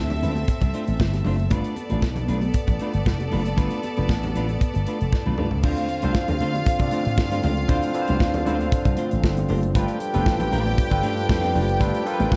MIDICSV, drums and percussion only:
0, 0, Header, 1, 2, 480
1, 0, Start_track
1, 0, Tempo, 514580
1, 1409, Time_signature, 4, 2, 24, 8
1, 11533, End_track
2, 0, Start_track
2, 0, Title_t, "Drums"
2, 94, Note_on_c, 9, 62, 30
2, 94, Note_on_c, 9, 63, 63
2, 94, Note_on_c, 9, 64, 64
2, 97, Note_on_c, 9, 42, 47
2, 187, Note_off_c, 9, 62, 0
2, 187, Note_off_c, 9, 63, 0
2, 187, Note_off_c, 9, 64, 0
2, 190, Note_off_c, 9, 42, 0
2, 213, Note_on_c, 9, 42, 59
2, 306, Note_off_c, 9, 42, 0
2, 331, Note_on_c, 9, 63, 68
2, 341, Note_on_c, 9, 42, 40
2, 424, Note_off_c, 9, 63, 0
2, 434, Note_off_c, 9, 42, 0
2, 447, Note_on_c, 9, 42, 80
2, 448, Note_on_c, 9, 62, 34
2, 449, Note_on_c, 9, 36, 109
2, 540, Note_off_c, 9, 42, 0
2, 541, Note_off_c, 9, 62, 0
2, 543, Note_off_c, 9, 36, 0
2, 566, Note_on_c, 9, 62, 41
2, 574, Note_on_c, 9, 36, 88
2, 576, Note_on_c, 9, 42, 50
2, 659, Note_off_c, 9, 62, 0
2, 668, Note_off_c, 9, 36, 0
2, 670, Note_off_c, 9, 42, 0
2, 688, Note_on_c, 9, 42, 61
2, 782, Note_off_c, 9, 42, 0
2, 817, Note_on_c, 9, 42, 42
2, 910, Note_off_c, 9, 42, 0
2, 931, Note_on_c, 9, 36, 110
2, 931, Note_on_c, 9, 62, 32
2, 942, Note_on_c, 9, 38, 112
2, 1024, Note_off_c, 9, 36, 0
2, 1024, Note_off_c, 9, 62, 0
2, 1035, Note_off_c, 9, 38, 0
2, 1056, Note_on_c, 9, 62, 27
2, 1056, Note_on_c, 9, 63, 66
2, 1059, Note_on_c, 9, 42, 47
2, 1061, Note_on_c, 9, 38, 34
2, 1149, Note_off_c, 9, 62, 0
2, 1149, Note_off_c, 9, 63, 0
2, 1152, Note_off_c, 9, 42, 0
2, 1154, Note_off_c, 9, 38, 0
2, 1162, Note_on_c, 9, 64, 71
2, 1171, Note_on_c, 9, 46, 53
2, 1255, Note_off_c, 9, 64, 0
2, 1264, Note_off_c, 9, 46, 0
2, 1303, Note_on_c, 9, 42, 50
2, 1397, Note_off_c, 9, 42, 0
2, 1403, Note_on_c, 9, 62, 32
2, 1405, Note_on_c, 9, 42, 77
2, 1410, Note_on_c, 9, 36, 108
2, 1496, Note_off_c, 9, 62, 0
2, 1498, Note_off_c, 9, 42, 0
2, 1503, Note_off_c, 9, 36, 0
2, 1533, Note_on_c, 9, 42, 46
2, 1626, Note_off_c, 9, 42, 0
2, 1645, Note_on_c, 9, 63, 53
2, 1646, Note_on_c, 9, 42, 59
2, 1739, Note_off_c, 9, 63, 0
2, 1740, Note_off_c, 9, 42, 0
2, 1770, Note_on_c, 9, 42, 44
2, 1770, Note_on_c, 9, 63, 69
2, 1863, Note_off_c, 9, 42, 0
2, 1863, Note_off_c, 9, 63, 0
2, 1887, Note_on_c, 9, 62, 32
2, 1888, Note_on_c, 9, 36, 98
2, 1892, Note_on_c, 9, 38, 94
2, 1980, Note_off_c, 9, 62, 0
2, 1981, Note_off_c, 9, 36, 0
2, 1985, Note_off_c, 9, 38, 0
2, 2012, Note_on_c, 9, 63, 70
2, 2012, Note_on_c, 9, 64, 70
2, 2015, Note_on_c, 9, 42, 52
2, 2106, Note_off_c, 9, 63, 0
2, 2106, Note_off_c, 9, 64, 0
2, 2109, Note_off_c, 9, 42, 0
2, 2131, Note_on_c, 9, 42, 60
2, 2224, Note_off_c, 9, 42, 0
2, 2251, Note_on_c, 9, 63, 70
2, 2259, Note_on_c, 9, 42, 39
2, 2345, Note_off_c, 9, 63, 0
2, 2352, Note_off_c, 9, 42, 0
2, 2366, Note_on_c, 9, 62, 35
2, 2367, Note_on_c, 9, 42, 88
2, 2372, Note_on_c, 9, 36, 110
2, 2459, Note_off_c, 9, 62, 0
2, 2460, Note_off_c, 9, 42, 0
2, 2465, Note_off_c, 9, 36, 0
2, 2492, Note_on_c, 9, 62, 45
2, 2493, Note_on_c, 9, 42, 47
2, 2498, Note_on_c, 9, 36, 92
2, 2586, Note_off_c, 9, 42, 0
2, 2586, Note_off_c, 9, 62, 0
2, 2591, Note_off_c, 9, 36, 0
2, 2607, Note_on_c, 9, 42, 58
2, 2700, Note_off_c, 9, 42, 0
2, 2737, Note_on_c, 9, 42, 43
2, 2830, Note_off_c, 9, 42, 0
2, 2856, Note_on_c, 9, 36, 111
2, 2857, Note_on_c, 9, 62, 31
2, 2863, Note_on_c, 9, 38, 94
2, 2949, Note_off_c, 9, 36, 0
2, 2950, Note_off_c, 9, 62, 0
2, 2956, Note_off_c, 9, 38, 0
2, 2983, Note_on_c, 9, 42, 44
2, 2990, Note_on_c, 9, 62, 29
2, 2990, Note_on_c, 9, 63, 66
2, 3077, Note_off_c, 9, 42, 0
2, 3083, Note_off_c, 9, 62, 0
2, 3083, Note_off_c, 9, 63, 0
2, 3091, Note_on_c, 9, 46, 55
2, 3101, Note_on_c, 9, 64, 71
2, 3184, Note_off_c, 9, 46, 0
2, 3194, Note_off_c, 9, 64, 0
2, 3223, Note_on_c, 9, 42, 49
2, 3316, Note_off_c, 9, 42, 0
2, 3335, Note_on_c, 9, 42, 75
2, 3337, Note_on_c, 9, 36, 107
2, 3428, Note_off_c, 9, 42, 0
2, 3430, Note_off_c, 9, 36, 0
2, 3457, Note_on_c, 9, 42, 43
2, 3468, Note_on_c, 9, 62, 29
2, 3550, Note_off_c, 9, 42, 0
2, 3561, Note_off_c, 9, 62, 0
2, 3575, Note_on_c, 9, 42, 56
2, 3580, Note_on_c, 9, 63, 52
2, 3668, Note_off_c, 9, 42, 0
2, 3674, Note_off_c, 9, 63, 0
2, 3700, Note_on_c, 9, 42, 42
2, 3707, Note_on_c, 9, 63, 75
2, 3793, Note_off_c, 9, 42, 0
2, 3801, Note_off_c, 9, 63, 0
2, 3816, Note_on_c, 9, 36, 115
2, 3823, Note_on_c, 9, 38, 94
2, 3828, Note_on_c, 9, 62, 30
2, 3910, Note_off_c, 9, 36, 0
2, 3916, Note_off_c, 9, 38, 0
2, 3922, Note_off_c, 9, 62, 0
2, 3947, Note_on_c, 9, 42, 48
2, 3953, Note_on_c, 9, 62, 30
2, 3953, Note_on_c, 9, 63, 74
2, 3953, Note_on_c, 9, 64, 72
2, 4040, Note_off_c, 9, 42, 0
2, 4047, Note_off_c, 9, 62, 0
2, 4047, Note_off_c, 9, 63, 0
2, 4047, Note_off_c, 9, 64, 0
2, 4063, Note_on_c, 9, 42, 59
2, 4156, Note_off_c, 9, 42, 0
2, 4185, Note_on_c, 9, 63, 70
2, 4188, Note_on_c, 9, 42, 38
2, 4278, Note_off_c, 9, 63, 0
2, 4281, Note_off_c, 9, 42, 0
2, 4297, Note_on_c, 9, 62, 32
2, 4302, Note_on_c, 9, 36, 114
2, 4304, Note_on_c, 9, 42, 77
2, 4390, Note_off_c, 9, 62, 0
2, 4395, Note_off_c, 9, 36, 0
2, 4397, Note_off_c, 9, 42, 0
2, 4419, Note_on_c, 9, 62, 45
2, 4427, Note_on_c, 9, 42, 45
2, 4512, Note_off_c, 9, 62, 0
2, 4520, Note_off_c, 9, 42, 0
2, 4539, Note_on_c, 9, 42, 71
2, 4632, Note_off_c, 9, 42, 0
2, 4670, Note_on_c, 9, 42, 43
2, 4764, Note_off_c, 9, 42, 0
2, 4779, Note_on_c, 9, 62, 35
2, 4781, Note_on_c, 9, 36, 105
2, 4792, Note_on_c, 9, 38, 54
2, 4873, Note_off_c, 9, 62, 0
2, 4874, Note_off_c, 9, 36, 0
2, 4885, Note_off_c, 9, 38, 0
2, 4904, Note_on_c, 9, 48, 54
2, 4910, Note_on_c, 9, 63, 63
2, 4997, Note_off_c, 9, 48, 0
2, 5003, Note_off_c, 9, 63, 0
2, 5015, Note_on_c, 9, 64, 77
2, 5017, Note_on_c, 9, 45, 66
2, 5109, Note_off_c, 9, 64, 0
2, 5110, Note_off_c, 9, 45, 0
2, 5140, Note_on_c, 9, 43, 74
2, 5233, Note_off_c, 9, 43, 0
2, 5253, Note_on_c, 9, 49, 97
2, 5257, Note_on_c, 9, 36, 127
2, 5346, Note_off_c, 9, 49, 0
2, 5351, Note_off_c, 9, 36, 0
2, 5377, Note_on_c, 9, 42, 55
2, 5383, Note_on_c, 9, 62, 33
2, 5470, Note_off_c, 9, 42, 0
2, 5476, Note_off_c, 9, 62, 0
2, 5491, Note_on_c, 9, 42, 69
2, 5584, Note_off_c, 9, 42, 0
2, 5615, Note_on_c, 9, 42, 51
2, 5622, Note_on_c, 9, 63, 79
2, 5708, Note_off_c, 9, 42, 0
2, 5715, Note_off_c, 9, 63, 0
2, 5733, Note_on_c, 9, 36, 105
2, 5734, Note_on_c, 9, 38, 102
2, 5735, Note_on_c, 9, 62, 42
2, 5827, Note_off_c, 9, 36, 0
2, 5827, Note_off_c, 9, 38, 0
2, 5828, Note_off_c, 9, 62, 0
2, 5858, Note_on_c, 9, 42, 53
2, 5862, Note_on_c, 9, 62, 38
2, 5862, Note_on_c, 9, 63, 79
2, 5862, Note_on_c, 9, 64, 82
2, 5952, Note_off_c, 9, 42, 0
2, 5955, Note_off_c, 9, 62, 0
2, 5955, Note_off_c, 9, 63, 0
2, 5955, Note_off_c, 9, 64, 0
2, 5973, Note_on_c, 9, 42, 63
2, 6067, Note_off_c, 9, 42, 0
2, 6102, Note_on_c, 9, 63, 77
2, 6107, Note_on_c, 9, 42, 41
2, 6195, Note_off_c, 9, 63, 0
2, 6200, Note_off_c, 9, 42, 0
2, 6213, Note_on_c, 9, 42, 104
2, 6213, Note_on_c, 9, 62, 39
2, 6216, Note_on_c, 9, 36, 124
2, 6306, Note_off_c, 9, 42, 0
2, 6307, Note_off_c, 9, 62, 0
2, 6309, Note_off_c, 9, 36, 0
2, 6333, Note_on_c, 9, 62, 52
2, 6337, Note_on_c, 9, 42, 52
2, 6339, Note_on_c, 9, 36, 95
2, 6426, Note_off_c, 9, 62, 0
2, 6430, Note_off_c, 9, 42, 0
2, 6433, Note_off_c, 9, 36, 0
2, 6447, Note_on_c, 9, 42, 72
2, 6540, Note_off_c, 9, 42, 0
2, 6576, Note_on_c, 9, 42, 48
2, 6669, Note_off_c, 9, 42, 0
2, 6694, Note_on_c, 9, 36, 123
2, 6701, Note_on_c, 9, 38, 119
2, 6702, Note_on_c, 9, 62, 41
2, 6788, Note_off_c, 9, 36, 0
2, 6794, Note_off_c, 9, 38, 0
2, 6795, Note_off_c, 9, 62, 0
2, 6823, Note_on_c, 9, 42, 52
2, 6825, Note_on_c, 9, 38, 36
2, 6826, Note_on_c, 9, 63, 71
2, 6916, Note_off_c, 9, 42, 0
2, 6918, Note_off_c, 9, 38, 0
2, 6919, Note_off_c, 9, 63, 0
2, 6929, Note_on_c, 9, 46, 55
2, 6936, Note_on_c, 9, 64, 91
2, 7022, Note_off_c, 9, 46, 0
2, 7029, Note_off_c, 9, 64, 0
2, 7060, Note_on_c, 9, 42, 48
2, 7154, Note_off_c, 9, 42, 0
2, 7171, Note_on_c, 9, 42, 89
2, 7174, Note_on_c, 9, 36, 127
2, 7175, Note_on_c, 9, 62, 43
2, 7264, Note_off_c, 9, 42, 0
2, 7267, Note_off_c, 9, 36, 0
2, 7268, Note_off_c, 9, 62, 0
2, 7300, Note_on_c, 9, 42, 57
2, 7308, Note_on_c, 9, 62, 34
2, 7393, Note_off_c, 9, 42, 0
2, 7401, Note_off_c, 9, 62, 0
2, 7409, Note_on_c, 9, 42, 67
2, 7502, Note_off_c, 9, 42, 0
2, 7533, Note_on_c, 9, 42, 53
2, 7548, Note_on_c, 9, 63, 84
2, 7626, Note_off_c, 9, 42, 0
2, 7641, Note_off_c, 9, 63, 0
2, 7652, Note_on_c, 9, 36, 127
2, 7658, Note_on_c, 9, 38, 108
2, 7661, Note_on_c, 9, 62, 38
2, 7745, Note_off_c, 9, 36, 0
2, 7751, Note_off_c, 9, 38, 0
2, 7754, Note_off_c, 9, 62, 0
2, 7777, Note_on_c, 9, 42, 55
2, 7782, Note_on_c, 9, 63, 78
2, 7782, Note_on_c, 9, 64, 82
2, 7871, Note_off_c, 9, 42, 0
2, 7875, Note_off_c, 9, 63, 0
2, 7875, Note_off_c, 9, 64, 0
2, 7896, Note_on_c, 9, 42, 65
2, 7989, Note_off_c, 9, 42, 0
2, 8018, Note_on_c, 9, 63, 75
2, 8028, Note_on_c, 9, 42, 41
2, 8111, Note_off_c, 9, 63, 0
2, 8121, Note_off_c, 9, 42, 0
2, 8135, Note_on_c, 9, 42, 98
2, 8136, Note_on_c, 9, 36, 127
2, 8228, Note_off_c, 9, 42, 0
2, 8229, Note_off_c, 9, 36, 0
2, 8257, Note_on_c, 9, 62, 52
2, 8258, Note_on_c, 9, 42, 58
2, 8259, Note_on_c, 9, 36, 103
2, 8350, Note_off_c, 9, 62, 0
2, 8351, Note_off_c, 9, 42, 0
2, 8353, Note_off_c, 9, 36, 0
2, 8366, Note_on_c, 9, 42, 73
2, 8459, Note_off_c, 9, 42, 0
2, 8500, Note_on_c, 9, 42, 45
2, 8593, Note_off_c, 9, 42, 0
2, 8616, Note_on_c, 9, 36, 116
2, 8623, Note_on_c, 9, 38, 127
2, 8709, Note_off_c, 9, 36, 0
2, 8716, Note_off_c, 9, 38, 0
2, 8739, Note_on_c, 9, 42, 50
2, 8750, Note_on_c, 9, 62, 36
2, 8750, Note_on_c, 9, 63, 67
2, 8833, Note_off_c, 9, 42, 0
2, 8843, Note_off_c, 9, 62, 0
2, 8843, Note_off_c, 9, 63, 0
2, 8848, Note_on_c, 9, 46, 61
2, 8861, Note_on_c, 9, 64, 89
2, 8941, Note_off_c, 9, 46, 0
2, 8954, Note_off_c, 9, 64, 0
2, 8984, Note_on_c, 9, 42, 54
2, 9077, Note_off_c, 9, 42, 0
2, 9097, Note_on_c, 9, 36, 121
2, 9097, Note_on_c, 9, 42, 96
2, 9097, Note_on_c, 9, 62, 41
2, 9190, Note_off_c, 9, 36, 0
2, 9190, Note_off_c, 9, 42, 0
2, 9191, Note_off_c, 9, 62, 0
2, 9219, Note_on_c, 9, 42, 48
2, 9312, Note_off_c, 9, 42, 0
2, 9331, Note_on_c, 9, 42, 67
2, 9424, Note_off_c, 9, 42, 0
2, 9457, Note_on_c, 9, 42, 52
2, 9460, Note_on_c, 9, 63, 82
2, 9550, Note_off_c, 9, 42, 0
2, 9553, Note_off_c, 9, 63, 0
2, 9573, Note_on_c, 9, 36, 118
2, 9579, Note_on_c, 9, 38, 101
2, 9666, Note_off_c, 9, 36, 0
2, 9672, Note_off_c, 9, 38, 0
2, 9700, Note_on_c, 9, 42, 54
2, 9703, Note_on_c, 9, 62, 37
2, 9703, Note_on_c, 9, 63, 74
2, 9703, Note_on_c, 9, 64, 79
2, 9793, Note_off_c, 9, 42, 0
2, 9796, Note_off_c, 9, 62, 0
2, 9796, Note_off_c, 9, 63, 0
2, 9796, Note_off_c, 9, 64, 0
2, 9818, Note_on_c, 9, 42, 67
2, 9911, Note_off_c, 9, 42, 0
2, 9946, Note_on_c, 9, 63, 76
2, 9947, Note_on_c, 9, 42, 42
2, 10039, Note_off_c, 9, 63, 0
2, 10040, Note_off_c, 9, 42, 0
2, 10057, Note_on_c, 9, 36, 118
2, 10059, Note_on_c, 9, 42, 90
2, 10151, Note_off_c, 9, 36, 0
2, 10152, Note_off_c, 9, 42, 0
2, 10178, Note_on_c, 9, 62, 51
2, 10181, Note_on_c, 9, 36, 104
2, 10184, Note_on_c, 9, 42, 49
2, 10272, Note_off_c, 9, 62, 0
2, 10275, Note_off_c, 9, 36, 0
2, 10277, Note_off_c, 9, 42, 0
2, 10292, Note_on_c, 9, 42, 73
2, 10385, Note_off_c, 9, 42, 0
2, 10421, Note_on_c, 9, 42, 47
2, 10514, Note_off_c, 9, 42, 0
2, 10535, Note_on_c, 9, 36, 125
2, 10539, Note_on_c, 9, 62, 38
2, 10545, Note_on_c, 9, 38, 122
2, 10628, Note_off_c, 9, 36, 0
2, 10633, Note_off_c, 9, 62, 0
2, 10638, Note_off_c, 9, 38, 0
2, 10668, Note_on_c, 9, 42, 50
2, 10669, Note_on_c, 9, 63, 77
2, 10670, Note_on_c, 9, 38, 39
2, 10762, Note_off_c, 9, 42, 0
2, 10762, Note_off_c, 9, 63, 0
2, 10764, Note_off_c, 9, 38, 0
2, 10775, Note_on_c, 9, 46, 63
2, 10781, Note_on_c, 9, 64, 79
2, 10868, Note_off_c, 9, 46, 0
2, 10875, Note_off_c, 9, 64, 0
2, 10907, Note_on_c, 9, 42, 53
2, 11000, Note_off_c, 9, 42, 0
2, 11013, Note_on_c, 9, 36, 116
2, 11016, Note_on_c, 9, 42, 95
2, 11107, Note_off_c, 9, 36, 0
2, 11110, Note_off_c, 9, 42, 0
2, 11142, Note_on_c, 9, 42, 57
2, 11235, Note_off_c, 9, 42, 0
2, 11255, Note_on_c, 9, 42, 73
2, 11349, Note_off_c, 9, 42, 0
2, 11378, Note_on_c, 9, 42, 48
2, 11378, Note_on_c, 9, 63, 80
2, 11471, Note_off_c, 9, 42, 0
2, 11471, Note_off_c, 9, 63, 0
2, 11490, Note_on_c, 9, 36, 124
2, 11500, Note_on_c, 9, 62, 36
2, 11502, Note_on_c, 9, 38, 96
2, 11533, Note_off_c, 9, 36, 0
2, 11533, Note_off_c, 9, 38, 0
2, 11533, Note_off_c, 9, 62, 0
2, 11533, End_track
0, 0, End_of_file